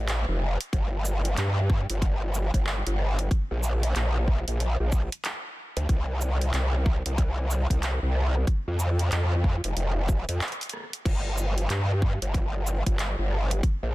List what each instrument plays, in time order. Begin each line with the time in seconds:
Already playing: wobble bass A1
0.09 clap, closed hi-hat
0.28 wobble bass F1
0.61 closed hi-hat
0.73 wobble bass G1, kick, closed hi-hat
1.05 shaker
1.25 closed hi-hat
1.37 wobble bass G2, clap, closed hi-hat
1.70 kick
1.90 wobble bass G1, closed hi-hat
2.02 kick, closed hi-hat
2.35 shaker
2.54 wobble bass G1, kick, closed hi-hat
2.67 clap
2.87 wobble bass G1, closed hi-hat
2.99 cross-stick
3.19 closed hi-hat
3.31 kick, closed hi-hat
3.51 wobble bass A#1
3.63 shaker
3.83 closed hi-hat
3.96 wobble bass A#1, clap, closed hi-hat
4.28 kick
4.48 wobble bass A#1, closed hi-hat
4.60 closed hi-hat
4.80 wobble bass A#1
4.92 kick, shaker
5.12 closed hi-hat
5.25 clap, closed hi-hat
5.77 wobble bass D2, closed hi-hat
5.89 wobble bass C2, kick, closed hi-hat
6.21 shaker
6.41 closed hi-hat
6.54 wobble bass C2, clap, closed hi-hat
6.86 kick
7.06 wobble bass C2, closed hi-hat
7.18 kick, closed hi-hat
7.51 shaker
7.70 wobble bass C2, kick, closed hi-hat
7.83 clap, closed hi-hat
8.03 wobble bass C2
8.15 cross-stick
8.22 cross-stick
8.26 cross-stick
8.35 cross-stick
8.37 cross-stick
8.44 kick, cross-stick, closed hi-hat
8.68 wobble bass F2
8.80 shaker
8.99 closed hi-hat
9.12 wobble bass F2, clap, closed hi-hat
9.44 kick
9.64 wobble bass F1, closed hi-hat
9.76 wobble bass F1, closed hi-hat
10.09 kick, shaker
10.29 wobble bass F2, closed hi-hat
10.41 clap, closed hi-hat
10.48 closed hi-hat
10.52 closed hi-hat
10.61 closed hi-hat
10.63 closed hi-hat
10.69 closed hi-hat
10.73 cross-stick
10.77 cross-stick
10.80 cross-stick
10.84 cross-stick
10.90 cross-stick, closed hi-hat
11.05 wobble bass G1, kick, closed hi-hat, crash
11.38 shaker
11.58 closed hi-hat
11.70 wobble bass G2, clap, closed hi-hat
12.02 kick
12.22 wobble bass G1, closed hi-hat
12.34 kick, closed hi-hat
12.67 shaker
12.86 wobble bass G1, kick, closed hi-hat
12.99 clap, closed hi-hat
13.19 wobble bass G1
13.31 cross-stick
13.51 closed hi-hat
13.63 kick, closed hi-hat
13.83 wobble bass A#1